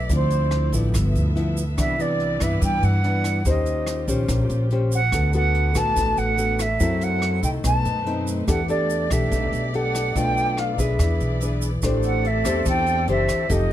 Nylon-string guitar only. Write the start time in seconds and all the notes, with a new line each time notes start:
0.10 D3 F3 C4 E4
0.73 F3 B3 E4
0.95 G2
1.36 F3 B3 E4
1.77 C3 E3 B3 D4
1.99 E3 B3 D4
2.41 E3 B3 D4
2.63 G2
3.04 E3 B3 D4
3.45 D#3 C#4 G4 C5
4.08 C#4 G4 C5
4.30 A#2
4.72 C#4 G4 C5
5.13 D3 B3 F#4 A4
5.34 B3 F#4 A4
5.75 B3 F#4 A4
5.96 A2
6.38 B3 F#4 A4
6.80 F#3 C4 E4 A4
7.44 A3 D#4
7.64 B2
8.06 A3 C4 D#4
8.48 E3 D4 G4 A4
8.69 D4 G4 A4
9.12 D4 G4 A4
9.33 B2
9.75 D4 G4 A4
10.16 B2 A3 D4 F4
10.79 D4 G#4 B4
11.01 E3
11.42 D4 G#4 B4
11.84 A3 D4 G4 C5
12.45 D4 G4 C5
12.68 E3
13.09 D4 G4 C5
13.49 F3 D#4 G4 A4